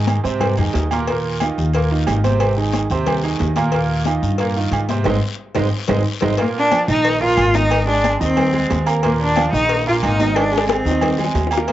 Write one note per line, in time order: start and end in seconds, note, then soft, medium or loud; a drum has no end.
0.00 0.19 G#2 loud
0.00 0.19 D#3 medium
0.00 0.19 D#4 medium
0.00 0.19 G#4 medium
0.07 cowbell medium
0.07 high conga loud
0.07 low agogo loud
0.07 short guiro medium
0.24 0.56 G#2 medium
0.24 0.51 C3 medium
0.24 0.52 C4 medium
0.24 0.52 C5 loud
0.24 short guiro medium
0.41 cowbell loud
0.41 high conga soft
0.41 low conga medium
0.41 low agogo loud
0.41 long guiro medium
0.58 0.74 F2 medium
0.58 0.85 D#3 medium
0.58 0.85 D#4 medium
0.58 0.86 G#4 medium
0.58 high conga soft
0.58 low conga medium
0.58 low agogo medium
0.74 1.52 D#2 medium
0.74 cowbell medium
0.74 high conga soft
0.74 low timbale medium
0.74 short guiro medium
0.91 1.06 A#2 medium
0.91 1.06 A#3 loud
0.91 1.06 A#4 medium
0.91 cowbell medium
0.91 high conga medium
0.91 low agogo loud
0.91 short guiro medium
1.07 1.36 A#2 medium
1.07 1.36 A#3 medium
1.07 1.36 A#4 medium
1.07 cowbell loud
1.07 high conga soft
1.07 low agogo medium
1.07 long guiro medium
1.25 high conga soft
1.40 1.69 D#3 medium
1.40 1.69 D#4 medium
1.40 1.69 F4 medium
1.40 cowbell medium
1.40 high conga medium
1.40 low agogo loud
1.40 short guiro medium
1.58 2.04 D#2 loud
1.58 short guiro medium
1.74 1.88 A#2 medium
1.74 1.89 A#3 medium
1.74 1.89 A#4 medium
1.74 cowbell loud
1.74 high conga soft
1.74 low agogo medium
1.74 long guiro medium
1.91 2.18 D#3 medium
1.91 2.18 D#4 medium
1.91 2.18 F4 medium
1.91 high conga soft
2.07 2.85 G#1 loud
2.07 cowbell medium
2.07 low timbale medium
2.07 low agogo loud
2.07 short guiro medium
2.24 2.51 C3 medium
2.24 2.51 C4 loud
2.24 2.52 C5 loud
2.24 cowbell medium
2.24 high conga medium
2.24 short guiro medium
2.40 cowbell loud
2.40 high conga soft
2.40 low agogo loud
2.40 long guiro medium
2.57 2.84 D#3 medium
2.57 2.84 D#4 medium
2.57 2.85 G#4 medium
2.57 high conga soft
2.73 cowbell medium
2.73 high conga loud
2.73 low agogo medium
2.73 short guiro medium
2.90 3.37 D#2 medium
2.90 3.18 C3 loud
2.90 3.18 C4 loud
2.90 3.18 C5 loud
2.90 short guiro medium
3.06 cowbell loud
3.06 high conga soft
3.06 low conga medium
3.06 low agogo loud
3.06 long guiro medium
3.23 3.51 D#3 medium
3.23 3.51 D#4 medium
3.23 3.51 G#4 medium
3.23 high conga soft
3.23 low agogo medium
3.39 4.17 D#2 loud
3.39 cowbell medium
3.39 high conga soft
3.39 low timbale medium
3.39 short guiro medium
3.56 3.70 A#2 loud
3.56 3.71 A#3 loud
3.56 3.71 A#4 loud
3.56 cowbell medium
3.56 high conga medium
3.56 low agogo loud
3.56 short guiro medium
3.72 4.01 A#2 medium
3.72 4.01 A#3 medium
3.72 4.01 A#4 medium
3.72 cowbell loud
3.72 high conga soft
3.72 low agogo medium
3.72 long guiro medium
3.89 high conga soft
4.05 4.34 D#3 medium
4.05 4.34 D#4 medium
4.05 4.34 F4 medium
4.05 cowbell medium
4.05 high conga medium
4.05 low agogo loud
4.05 short guiro medium
4.23 4.69 G2 medium
4.23 short guiro medium
4.38 4.53 A#2 medium
4.38 4.53 A#3 medium
4.38 4.53 A#4 medium
4.38 cowbell loud
4.38 high conga soft
4.38 low agogo medium
4.38 long guiro medium
4.55 4.83 D#3 medium
4.55 4.84 D#4 medium
4.55 4.84 F4 medium
4.55 high conga soft
4.71 5.03 G#2 loud
4.71 cowbell medium
4.71 high conga soft
4.71 low agogo loud
4.71 short guiro medium
4.89 5.03 C3 medium
4.89 5.03 C4 loud
4.89 5.04 C5 medium
4.89 cowbell medium
4.89 high conga medium
4.89 short guiro medium
5.04 5.18 G#1 loud
5.04 5.17 G#3 loud
5.04 5.17 C4 loud
5.04 5.16 D#4 loud
5.04 cowbell loud
5.04 low conga loud
5.04 high timbale loud
5.04 long guiro loud
5.55 5.68 G#1 loud
5.55 5.66 G#3 loud
5.55 5.67 C4 loud
5.55 5.66 D#4 loud
5.55 cowbell loud
5.55 low conga loud
5.55 high timbale loud
5.55 long guiro loud
5.88 6.01 G#1 loud
5.88 6.00 G#3 loud
5.88 6.00 C4 medium
5.88 6.00 D#4 loud
5.88 cowbell loud
5.88 low conga loud
5.88 high timbale loud
5.88 long guiro loud
6.21 6.34 G#1 loud
6.21 6.33 G#3 loud
6.21 6.33 C4 loud
6.21 6.33 D#4 loud
6.21 cowbell loud
6.21 low conga loud
6.21 high timbale loud
6.21 long guiro loud
6.38 6.66 A#2 medium
6.38 6.66 A#3 medium
6.38 6.48 A#3 loud
6.38 6.66 A#4 medium
6.38 cowbell loud
6.38 high conga soft
6.38 low agogo medium
6.38 long guiro medium
6.55 6.87 D4 loud
6.55 high conga soft
6.71 6.85 F3 medium
6.71 6.85 F4 medium
6.71 6.85 F5 medium
6.71 cowbell medium
6.71 high conga loud
6.71 low agogo loud
6.71 short guiro medium
6.88 7.34 A#1 loud
6.88 7.15 D#3 medium
6.88 7.16 D#4 medium
6.88 7.20 D#4 loud
6.88 7.16 D#5 medium
6.88 short guiro medium
7.04 cowbell loud
7.04 high conga soft
7.04 low agogo medium
7.04 long guiro medium
7.21 7.48 A#2 loud
7.21 7.48 A#3 loud
7.21 7.56 F4 loud
7.21 7.49 A#4 loud
7.21 high conga soft
7.37 8.15 G#1 loud
7.37 cowbell medium
7.37 high conga soft
7.37 low agogo loud
7.37 short guiro medium
7.54 7.82 D#3 medium
7.54 7.82 D#4 medium
7.54 7.88 D#4 loud
7.54 7.82 D#5 medium
7.54 cowbell medium
7.54 high conga medium
7.54 short guiro medium
7.71 cowbell loud
7.71 high conga soft
7.71 low agogo loud
7.71 long guiro medium
7.87 8.15 G#3 medium
7.87 8.19 D4 loud
7.87 8.15 G#4 medium
7.87 8.15 G#5 medium
7.87 high conga soft
8.04 cowbell medium
8.04 high conga loud
8.04 low agogo medium
8.04 short guiro medium
8.20 8.67 D#2 loud
8.20 8.48 D#3 medium
8.20 8.84 C4 loud
8.20 8.48 D#4 medium
8.20 8.48 D#5 medium
8.20 short guiro medium
8.37 cowbell loud
8.37 high conga soft
8.37 low conga medium
8.37 low agogo loud
8.37 long guiro medium
8.53 8.81 G#3 medium
8.53 8.81 G#4 medium
8.53 8.81 G#5 medium
8.53 high conga soft
8.53 low conga medium
8.53 low agogo medium
8.70 9.48 D#2 loud
8.70 cowbell medium
8.70 high conga soft
8.70 low timbale medium
8.70 short guiro medium
8.86 9.00 A#3 medium
8.86 9.00 A#4 medium
8.86 9.00 A#5 medium
8.86 cowbell medium
8.86 low agogo loud
8.86 short guiro medium
9.03 9.31 A#2 loud
9.03 9.31 A#3 medium
9.03 9.12 A#3 loud
9.03 9.31 A#4 medium
9.03 cowbell loud
9.03 high conga soft
9.03 low agogo medium
9.03 long guiro medium
9.20 9.51 D4 loud
9.20 high conga soft
9.36 9.50 F3 medium
9.36 9.50 F4 medium
9.36 9.50 F5 medium
9.36 cowbell medium
9.36 high conga loud
9.36 low agogo loud
9.36 short guiro medium
9.53 9.99 A#1 loud
9.53 9.80 D#3 medium
9.53 9.84 D#4 loud
9.53 9.80 D#4 medium
9.53 9.81 D#5 medium
9.53 short guiro medium
9.69 cowbell loud
9.69 high conga soft
9.69 low agogo medium
9.69 long guiro medium
9.87 10.14 A#2 loud
9.87 10.14 A#3 loud
9.87 9.95 F4 loud
9.87 10.14 A#4 loud
9.87 high conga soft
10.03 10.80 G#1 loud
10.03 10.38 D#4 loud
10.03 cowbell medium
10.03 high conga soft
10.03 low agogo loud
10.03 short guiro medium
10.20 10.46 D#3 medium
10.20 10.46 D#4 medium
10.20 10.46 D#5 medium
10.20 cowbell medium
10.20 high conga medium
10.20 short guiro medium
10.36 10.69 D4 loud
10.36 cowbell loud
10.36 high bongo loud
10.36 low agogo loud
10.36 long guiro medium
10.52 10.79 G#3 medium
10.52 10.80 G#4 medium
10.52 10.80 G#5 medium
10.52 high conga soft
10.58 high bongo loud
10.69 11.31 C4 medium
10.69 cowbell medium
10.69 high bongo loud
10.69 high conga loud
10.69 low agogo loud
10.69 short guiro medium
10.85 11.31 D#2 loud
10.85 11.12 D#3 medium
10.85 11.13 D#4 medium
10.85 11.13 D#5 medium
10.85 short guiro medium
10.91 low bongo medium
11.01 cowbell loud
11.01 low bongo medium
11.01 high conga soft
11.01 low conga medium
11.01 low agogo loud
11.01 long guiro medium
11.18 11.45 G#3 medium
11.18 11.45 G#4 medium
11.18 11.45 G#5 medium
11.18 high conga soft
11.18 low conga medium
11.18 low agogo medium
11.24 low bongo medium
11.34 11.72 D#2 loud
11.34 cowbell medium
11.34 high conga soft
11.34 low timbale medium
11.34 short guiro medium
11.47 low bongo medium
11.47 low agogo loud
11.52 11.65 A#3 medium
11.52 11.65 A#4 medium
11.52 11.65 A#5 medium
11.52 cowbell medium
11.52 short guiro medium
11.57 low bongo medium
11.67 11.72 A#2 medium
11.67 11.72 A#3 loud
11.67 cowbell loud
11.67 high conga soft
11.67 low agogo medium
11.67 long guiro medium